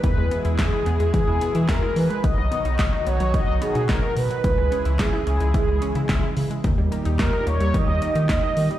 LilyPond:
<<
  \new Staff \with { instrumentName = "Analog polysynth" } { \time 4/4 \key b \major \tempo 4 = 109 b'4 gis'4 gis'4 ais'8 b'8 | dis''4. cis''8 dis''8 gis'8 ais'8 b'8 | b'4 gis'4 gis'4. r8 | r4 ais'8 cis''8 dis''4 dis''4 | }
  \new Staff \with { instrumentName = "Synth arpeggio sound" } { \time 4/4 \key b \major e16 gis16 b16 e'16 e''16 e'16 b16 gis16 e16 gis16 b16 e'16 e''16 e'16 r16 gis16 | dis16 fis16 b16 dis'16 dis''16 dis'16 b16 fis16 dis16 fis16 b16 dis'16 dis''16 dis'16 r16 fis16 | e16 gis16 cis'16 e'16 e''16 e'16 cis'16 gis16 e16 gis16 cis'16 e'16 e''16 e'16 r16 gis16 | dis16 g16 ais16 dis'16 dis''16 dis'16 ais16 g16 dis16 g16 ais16 dis'16 dis''16 dis'16 r16 g16 | }
  \new Staff \with { instrumentName = "Analog synth pad" } { \clef bass \time 4/4 \key b \major << { <e gis e' gis'>1 | <dis fis dis' fis'>1 | <e gis e' gis'>1 | <dis g dis' g'>1 | } \\ { b,1~ | b,1 | cis1 | ais,1 | } >> }
  \new Staff \with { instrumentName = "Analog synth bass" } { \clef bass \time 4/4 \key b \major e,16 e,16 r16 e,16 e,16 r16 e,16 e,16 r16 e,16 r16 e16 e,16 r16 e16 r16 | b,,16 b,,16 r16 b,,16 b,,16 r16 b,,16 b,,16 r16 b,,16 r16 b,16 b,,16 r16 b,16 r16 | cis,16 cis,16 r16 cis,16 cis,16 r16 cis,16 cis,16 r16 cis,16 r16 cis16 cis,16 r16 cis16 r16 | dis,16 dis,16 r16 dis,16 dis,16 r16 dis,16 dis,16 r16 dis,16 r16 dis16 dis,16 r16 dis16 r16 | }
  \new DrumStaff \with { instrumentName = "Drums" } \drummode { \time 4/4 <hh bd>8 hh16 hh16 <hc hh bd sn>8 hh16 hh16 <hh bd>8 hh16 hh16 <hc hh bd sn>8 hho16 hh16 | <hh bd>8 hh16 hh16 <hc hh bd sn>8 hh16 hh16 <hh bd>8 hh16 hh16 <hc hh bd sn>8 hho16 hh16 | <hh bd>8 hh16 hh16 <hc hh bd sn>8 hh16 hh16 <hh bd>8 hh16 hh16 <hc hh bd sn>8 hho16 hh16 | <hh bd>8 hh16 hh16 <hc hh bd sn>8 hh16 hh16 <hh bd>8 hh16 hh16 <hc hh bd sn>8 hho16 hh16 | }
>>